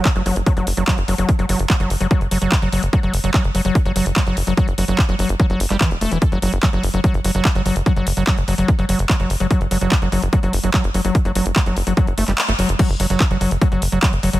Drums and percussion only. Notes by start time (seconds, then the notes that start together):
0.05 kick, clap, closed hi-hat
0.16 closed hi-hat
0.26 open hi-hat
0.36 closed hi-hat
0.46 kick, closed hi-hat
0.57 closed hi-hat
0.67 open hi-hat
0.77 closed hi-hat
0.88 kick, clap, closed hi-hat
0.98 closed hi-hat
1.08 open hi-hat
1.18 closed hi-hat
1.29 kick, closed hi-hat
1.39 closed hi-hat
1.49 open hi-hat
1.59 closed hi-hat
1.70 kick, clap, closed hi-hat
1.80 closed hi-hat
1.90 open hi-hat
2.01 closed hi-hat
2.11 kick, closed hi-hat
2.21 closed hi-hat
2.31 open hi-hat
2.42 closed hi-hat
2.52 kick, clap, closed hi-hat
2.62 closed hi-hat
2.72 open hi-hat
2.83 closed hi-hat
2.93 kick, closed hi-hat
3.03 closed hi-hat
3.14 open hi-hat
3.24 closed hi-hat
3.34 kick, clap, closed hi-hat
3.44 closed hi-hat
3.55 open hi-hat
3.65 closed hi-hat
3.75 kick, closed hi-hat
3.85 closed hi-hat
3.96 open hi-hat
4.06 closed hi-hat
4.16 kick, clap, closed hi-hat
4.27 closed hi-hat
4.37 open hi-hat
4.47 closed hi-hat
4.57 kick, closed hi-hat
4.68 closed hi-hat
4.78 open hi-hat
4.88 closed hi-hat
4.98 kick, clap, closed hi-hat
5.09 closed hi-hat
5.19 open hi-hat
5.29 closed hi-hat
5.40 kick, closed hi-hat
5.50 closed hi-hat
5.60 open hi-hat
5.70 clap, closed hi-hat
5.81 kick, clap, closed hi-hat
5.91 closed hi-hat
6.01 open hi-hat
6.12 closed hi-hat
6.22 kick, closed hi-hat
6.32 closed hi-hat
6.42 open hi-hat
6.53 closed hi-hat
6.63 kick, clap, closed hi-hat
6.73 closed hi-hat
6.83 open hi-hat
6.94 closed hi-hat
7.04 kick, closed hi-hat
7.14 closed hi-hat
7.24 open hi-hat
7.35 closed hi-hat
7.45 kick, clap, closed hi-hat
7.55 closed hi-hat
7.66 open hi-hat
7.76 closed hi-hat
7.86 kick, closed hi-hat
7.96 closed hi-hat
8.07 open hi-hat
8.17 closed hi-hat
8.27 kick, clap, closed hi-hat
8.38 closed hi-hat
8.48 open hi-hat
8.58 closed hi-hat
8.68 kick, closed hi-hat
8.79 closed hi-hat
8.89 open hi-hat
8.99 closed hi-hat
9.09 kick, clap, closed hi-hat
9.20 closed hi-hat
9.30 open hi-hat
9.40 closed hi-hat
9.51 kick, closed hi-hat
9.61 closed hi-hat
9.71 open hi-hat
9.81 closed hi-hat
9.92 kick, clap, closed hi-hat
10.02 closed hi-hat
10.12 open hi-hat
10.22 closed hi-hat
10.33 kick, closed hi-hat
10.43 closed hi-hat
10.53 open hi-hat
10.64 closed hi-hat
10.74 kick, clap, closed hi-hat
10.84 closed hi-hat
10.94 open hi-hat
11.05 closed hi-hat
11.15 kick, closed hi-hat
11.25 closed hi-hat
11.35 open hi-hat
11.46 closed hi-hat
11.56 kick, clap, closed hi-hat
11.66 closed hi-hat
11.76 open hi-hat
11.87 closed hi-hat
11.97 kick, closed hi-hat
12.07 closed hi-hat
12.18 open hi-hat
12.28 clap, closed hi-hat
12.38 clap, closed hi-hat
12.48 closed hi-hat
12.59 open hi-hat
12.69 closed hi-hat
12.79 kick, closed hi-hat, crash
12.90 closed hi-hat
13.00 open hi-hat
13.10 closed hi-hat
13.20 kick, clap, closed hi-hat
13.31 closed hi-hat
13.41 open hi-hat
13.51 closed hi-hat
13.61 kick, closed hi-hat
13.72 closed hi-hat
13.82 open hi-hat
13.92 closed hi-hat
14.03 kick, clap, closed hi-hat
14.13 closed hi-hat
14.23 open hi-hat
14.33 closed hi-hat